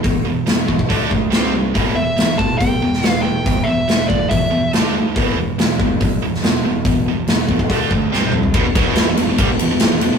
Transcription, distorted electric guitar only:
X:1
M:4/4
L:1/16
Q:1/4=141
K:Em
V:1 name="Distorted electric guitar" clef=bass
[E,,B,,]2 [E,,B,,]2 [E,,B,,]2 [E,,B,,]2 [D,A,D]2 [D,A,]2 [C,G,C]2 [C,G,]2 | [E,,B,,E,]2 [E,,B,,]2 [E,,B,,]2 [E,,B,,]2 [E,,B,,]2 [E,,B,,]2 [E,,B,,]2 [E,,B,,]2 | [E,,B,,]2 [E,,B,,]2 [E,,B,,]2 [E,,B,,]2 [E,,B,,]2 [E,,B,,]2 [D,A,D]2 [D,A,]2 | [E,,B,,E,]2 [E,,B,,]2 [E,,B,,]2 [E,,B,,]2 [E,,B,,]2 [E,,B,,]2 [E,,B,,]2 [E,,B,,]2 |
[E,,B,,]2 [E,,B,,]2 [E,,B,,]2 [E,,B,,]2 [D,A,D]2 [D,A,]2 [C,G,C]2 [C,G,]2 | [E,,B,,] z [B,,F,] [E,,B,,E,]2 [E,,B,,] [E,,B,,] [E,,B,,] [C,G,] [E,,B,,] [E,,B,,] [E,,B,,] [E,,B,,] [E,,B,,] [E,,B,,] z |]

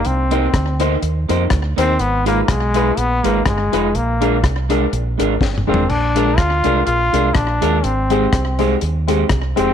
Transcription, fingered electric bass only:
X:1
M:4/4
L:1/8
Q:"Swing" 1/4=123
K:Bbmix
V:1 name="Fingered electric bass" clef=bass
C,,2 D,,2 E,, F,, D,, E,, | A,,,2 _C,,2 B,,, A,,, G,,, F,,, | B,,,2 C,,2 B,,, A,,, G,,, F,,, | B,,,2 D,, C,, B,,, C,, B,,, E,, |
A,,,2 C,,2 E,,2 C,, F,,, |]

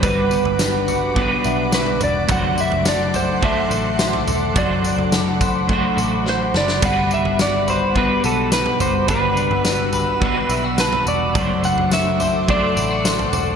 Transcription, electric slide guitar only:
X:1
M:4/4
L:1/8
Q:1/4=106
K:G
V:1 name="Electric slide guitar"
B6 B d | f e d c e4 | d2 z4 c d | f e d c B A B c |
B6 B d- | d f e2 d4 |]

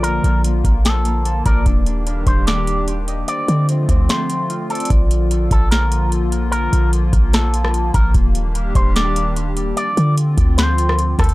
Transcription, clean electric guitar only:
X:1
M:4/4
L:1/8
Q:1/4=148
K:Bb
V:1 name="Clean electric guitar"
B2 z2 A3 B | z3 c d2 z2 | d2 z2 c3 A | z3 A B2 z2 |
B2 z2 A3 B | z3 c d2 z2 | d2 z2 c3 A |]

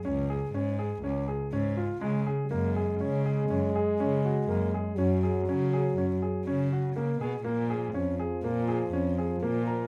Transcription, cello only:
X:1
M:5/4
L:1/8
Q:1/4=122
K:F#
V:1 name="Cello" clef=bass
C,,2 G,,2 C,, z G,,2 C, z | F,,2 C,2 F,, z C,2 F,, z | F,,2 C,2 F,, z C,2 C, B,, | A,,2 E,, z A,,2 E,,2 A,,2 |]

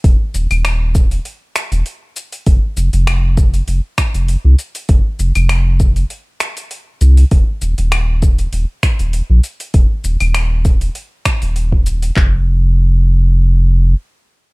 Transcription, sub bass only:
X:1
M:4/4
L:1/16
Q:"Swing 16ths" 1/4=99
K:Ebmix
V:1 name="Sub bass" clef=bass
E,,, z E,,, E,,,4- E,,, z3 E,,, z4 | F,,, z F,,, F,,,4- F,,, F,,, z2 F,,, z C,, z2 | F,,, z F,,, F,,,4- F,,, z6 C,, z | E,,, z E,,, E,,,4- E,,, E,,, z2 E,,, z B,,, z2 |
E,,, z E,,, E,,,4- E,,, z3 E,,,4- E,,, | F,,,12 z4 |]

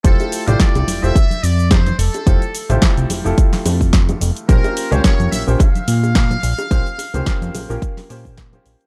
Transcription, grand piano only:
X:1
M:4/4
L:1/16
Q:"Swing 16ths" 1/4=108
K:F
V:1 name="Grand piano"
[A,EFGc]3 [A,EFGd]4 [A,EFGc] z8 | [A,EFGc] z2 [A,EFGc]4 [A,EFGA]8- [A,EFGA] | [B,_DFGc]3 [B,DFG_d]4 [B,DFGc] z8 | [B,_DFGc] z2 [B,DFGc]4 [B,DFGB]3 [B,DFGc]3 [B,DFGc]3 |]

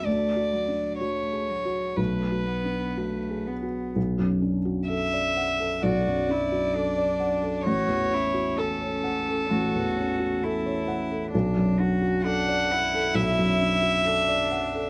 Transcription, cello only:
X:1
M:4/4
L:1/8
Q:1/4=65
K:Bm
V:1 name="Cello"
A, F, A, F, A, B, A, B, | z4 F E D2 | F E C2 F2 E2 | D F D E3 D2 |]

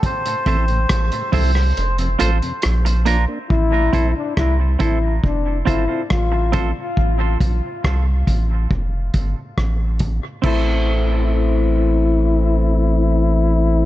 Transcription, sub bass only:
X:1
M:4/4
L:1/16
Q:1/4=69
K:Aphr
V:1 name="Sub bass" clef=bass
z2 A,,,2 A,,, z C,,2 F,,,2 A,,, z B,,,3 z | A,,,2 B,,, z C,,2 A,,,2 F,,,2 G,,, z A,,,3 z | A,,,2 B,,, z C,,2 A,,,2 F,,,2 G,,, z A,,,3 z | A,,,16 |]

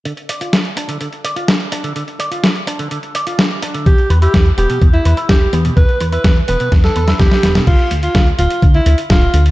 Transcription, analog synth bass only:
X:1
M:4/4
L:1/8
Q:1/4=126
K:Ddor
V:1 name="Analog synth bass" clef=bass
z8 | z8 | E,, E,, E,, E,,, E,, E,, E,,, E,, | E,, E,, E,, E,,, E,, E,, E,, E,,, |
D,, D,, D,, D,,, D,, D,, D,,, D,, |]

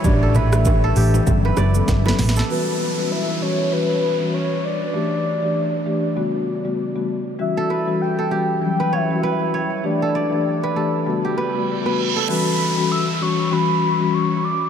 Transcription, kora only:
X:1
M:4/4
L:1/16
Q:"Swing 16ths" 1/4=98
K:Edor
V:1 name="Kora"
z A B z2 A G z2 B d z2 B z A | z16 | z16 | z A B z2 A G z2 B c z B z c z |
z A d z2 B A z2 G B z2 B z A | z16 |]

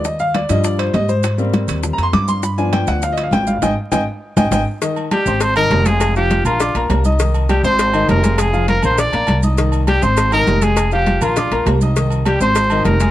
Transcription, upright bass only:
X:1
M:4/4
L:1/8
Q:1/4=202
K:Cm
V:1 name="Upright bass" clef=bass
E,,3 G,,3 A,,2- | A,,3 E,,2 F,, G,,2- | G,,3 D,,3 A,,,2 | A,,, z A,,, z2 A,,, A,,, z |
z3 A,,,3 F,,,2- | F,,,3 B,,,2 B,,, C,,2- | C,,3 A,,,3 F,,,2- | F,,,3 B,,,2 B,,, C,,2- |
C,,3 A,,,3 F,,,2- | F,,,3 B,,,2 B,,, C,,2- | C,,3 A,,,3 F,,,2 |]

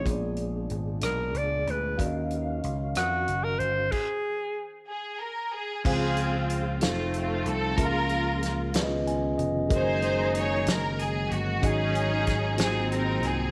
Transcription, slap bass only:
X:1
M:6/8
L:1/8
Q:3/8=62
K:Db
V:1 name="Slap bass" clef=bass
B,,,2 A,,, _C,, D,, =D,, | E,,2 D,, F,, G,,, =G,,, | z6 | D,,3 F,,,2 C,, |
D,,3 D,,2 F,,, | G,,,3 G,,,2 =G,,, | A,,,3 A,,,2 C,, |]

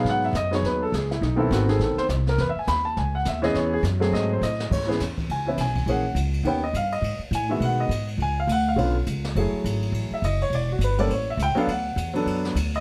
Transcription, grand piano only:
X:1
M:4/4
L:1/8
Q:"Swing" 1/4=206
K:E
V:1 name="Grand piano"
f e d c B A G E | D E F G A =c z ^A | (3B e g b a g f e d | c G z2 d ^B d2 |
[K:C#m] c2 z2 g e g2 | f2 z2 [f=g] d ^e d- | d z g e f d2 z | g ^e f e2 z3 |
z4 z e d c | =d F B d [^Bc] e =g ^e | f3 z4 d |]
V:2 name="Grand piano"
[F,B,DG]2 z [F,B,DG]3 z2 | z [D,B,=CA]2 [D,B,CA]3 z2 | z6 z [E,B,CG]- | [E,B,CG]2 z [F,A,=CG]3 z2 |
[K:C#m] z [E,B,CG] z3 [E,B,CE] z2 | [E,^A,CG] z3 [D,B,C=G] z3 | z3 [D,G,B,F]3 z2 | z4 [=D,B,C^E] z3 |
[F,A,EG]4- [F,A,EG] z3 | z3 [=G,^A,C=A] z3 [F,B,=DA] | z3 [F,B,=DA]3 z2 |]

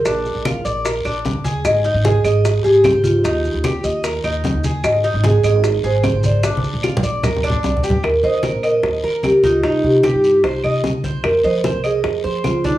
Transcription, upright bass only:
X:1
M:4/4
L:1/16
Q:1/4=150
K:Eb
V:1 name="Upright bass" clef=bass
B,,,3 B,,,3 B,,,4 B,,,3 E,,3 | A,,,3 A,,,3 A,,,4 A,,,3 A,,,3 | E,,3 E,,3 E,,4 E,,3 E,,3 | A,,,3 A,,,3 A,,,4 A,,,3 A,,,3 |
B,,,3 B,,,3 B,,,4 B,,,2 C,,2 D,,2 | E,,2 E,3 B,,,3 E,,2 E,4 D,,2 | C,,2 C,3 G,,3 C,,2 C,4 C,,2 | F,,2 F,3 C,,3 F,,2 F,4 C,,2 |]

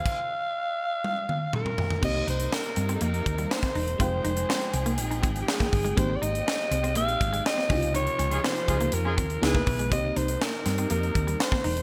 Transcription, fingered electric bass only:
X:1
M:4/4
L:1/8
Q:1/4=122
K:Cphr
V:1 name="Fingered electric bass" clef=bass
z8 | C,, C,, z G,, F,, E,, z =E,,, | F,,, F,,, z C,, B,,, A,,, z G,,, | A,,, A,,, z C,, B,,, A,,, z D,,- |
D,, D,, z D,, F,, E,, D,, _C,, | C,, C,, z G,, F,, E,, z =E,,, |]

